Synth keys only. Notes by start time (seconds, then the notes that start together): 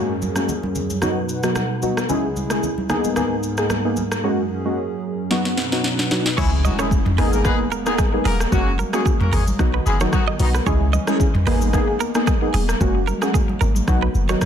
Already playing: G#3 A#3 C#4 F#4
0.36 G#3 A#3 C#4 F#4
1.02 F#3 B3 D#4 F#4
1.43 F#3 B3 D#4 F#4
1.82 F#3 B3 D#4 F#4
2.09 G#3 C#4 E4 G#4
2.50 G#3 C#4 E4 G#4
2.89 A#3 B3 D#4 G#4
3.16 A#3 B3 D#4 G#4
3.58 A#3 B3 D#4 G#4
3.85 A#3 B3 D#4 G#4
4.24 G#3 A#3 C#4 F#4
4.65 G#3 A#3 C#4 F#4
5.31 F#3 B3 D#4 F#4
5.72 F#3 B3 D#4 F#4
6.11 F#3 B3 D#4 F#4
6.38 G#3 C#4 E4 G#4
6.79 G#3 C#4 E4 G#4
7.18 A#3 B3 D#4 G#4
7.45 A#3 B3 D#4 G#4
7.86 A#3 B3 D#4 G#4
8.13 A#3 B3 D#4 G#4
8.52 G#3 A#3 C#4 F#4
8.93 G#3 A#3 C#4 F#4
9.59 F#3 B3 D#4 F#4
10.01 F#3 B3 D#4 F#4
10.39 F#3 B3 D#4 F#4
10.66 G#3 C#4 E4 G#4
11.07 G#3 C#4 E4 G#4
11.47 A#3 B3 D#4 G#4
11.73 A#3 B3 D#4 G#4
12.15 A#3 B3 D#4 G#4
12.42 A#3 B3 D#4 G#4
12.80 G#3 A#3 C#4 F#4
13.22 G#3 A#3 C#4 F#4
13.87 F#3 B3 D#4 F#4
14.29 F#3 B3 D#4 F#4